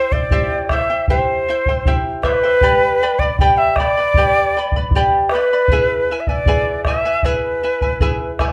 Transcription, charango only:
Already playing: E4 C5 E5 G5
0.13 E4 C5 G5
0.32 E4 G4 C5 E5 G5
0.71 E4 C5 E5 G5
0.90 E4 C5 G5
1.10 E4 G4 C5 E5 G5
1.48 E4 C5 E5 G5
1.69 E4 C5 G5
1.87 E4 G4 C5 E5 G5
2.24 E4 C5 E5 G5
2.43 E4 C5 G5
2.63 G4 B4 D5 G5 B5
3.03 B4 D5 G5 B5
3.21 B4 D5 B5
3.41 G4 B4 D5 G5 B5
3.79 B4 D5 G5 B5
3.97 B4 D5 B5
4.17 G4 B4 D5 G5 B5
4.57 B4 D5 G5 B5
4.76 B4 D5 B5
4.95 G4 B4 D5 G5 B5
5.34 B4 D5 G5 B5
5.53 B4 D5 B5
5.72 E4 G#4 B4 E5 G#5
6.11 E4 B4 E5 G#5
6.29 E4 B4 G#5
6.47 E4 G#4 B4 E5 G#5
6.86 E4 B4 E5 G#5
7.05 E4 B4 G#5
7.25 E4 G#4 B4 E5 G#5
7.63 E4 B4 E5 G#5
7.82 E4 B4 G#5
8.01 E4 G#4 B4 E5 G#5
8.39 E4 B4 E5 G#5

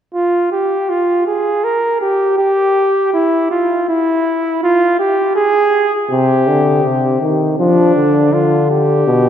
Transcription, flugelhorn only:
0.14 F4
0.51 G4
0.90 F4
1.27 G#4
1.64 A#4
2.01 G4
2.39 G4
3.13 E4
3.51 F4
3.89 E4
4.63 F4
4.99 G4
5.36 G#4
6.10 G4
7.58 D4
8.33 F4
8.71 G4

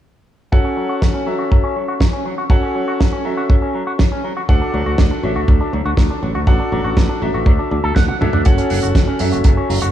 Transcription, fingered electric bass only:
4.49 D2
4.74 D2
4.86 D2
4.99 D2
5.23 A1
5.36 D2
5.48 D2
5.73 D2
5.85 D2
5.97 D2
6.23 A1
6.35 D2
6.47 A1
6.72 A1
6.84 A1
6.97 A1
7.22 A1
7.34 A1
7.46 D2
7.71 D2
7.84 D2
7.96 D2
8.21 D2
8.33 D2
8.46 F#1
8.71 F#1
8.83 F#1
8.95 F#1
9.20 F#2
9.32 F#1
9.45 F#1
9.70 F#1
9.82 F#1

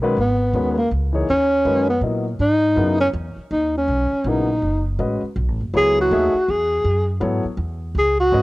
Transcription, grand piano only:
0.02 D#3 G#3 C#4 F#4 B4
0.54 D#3 G#3 C#4 F#4 B4
1.13 E3 A#3 D#4 G#4 C#5
1.65 D#3 G#3 C#4 F#4 B4
2.02 F#3 B3 E4 A#4 D#5
2.75 C#3 F#3 B3 E4 A#4
4.26 C#3 F#3 B3 E4 A#4
4.99 G#3 C#4 F#4 B4 D#5
5.73 F#3 B3 E4 A4 C#5
6.11 A3 D#4 G#4 C#5 E5
7.20 F#3 B3 E4 A4 C#5
8.32 G#3 C#4 F#4 B4 D#5

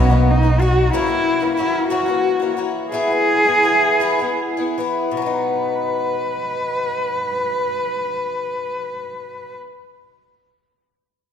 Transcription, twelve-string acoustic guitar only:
Already playing: B2 F#3 A#3 D#4
0.10 A#3 D#4 F#4
0.43 A#3 D#4 F#4
0.59 F#3 A#3 D#4 F#4
0.93 F#2 C#3 E3 A#3 C#4 F#4
1.07 E3 A#3 C#4 F#4
1.40 E3 A#3 C#4 F#4
1.57 E3 A#3 C#4 F#4
1.90 F#2 C#3 E3 A#3 C#4 F#4
2.06 E3 A#3 C#4 F#4
2.40 E3 A#3 C#4 F#4
2.57 E3 A#3 C#4 F#4
2.92 E3 B3 E4 G#4
3.10 B3 E4 G#4
3.45 B3 E4 G#4
3.63 E3 B3 E4 G#4
4.00 E3 B3 E4 G#4
4.19 B3 E4 G#4
4.57 B3 E4 G#4
4.78 E3 B3 E4 G#4
5.11 B2
5.17 F#3
5.22 B3
5.26 D#4

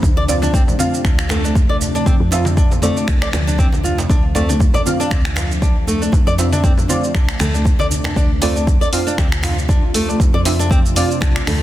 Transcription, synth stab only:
0.28 C4 F4 D5
0.79 C4 F4 F5
2.32 C4 F4 E5
2.82 C4 F4 D5
4.35 C4 F4 D5
4.86 C4 F4 F5
6.39 C4 F4 E5
6.89 C4 F4 D5
8.42 C4 F4 D5
8.93 C4 F4 F5
10.45 C4 F4 E5
10.96 C4 F4 D5

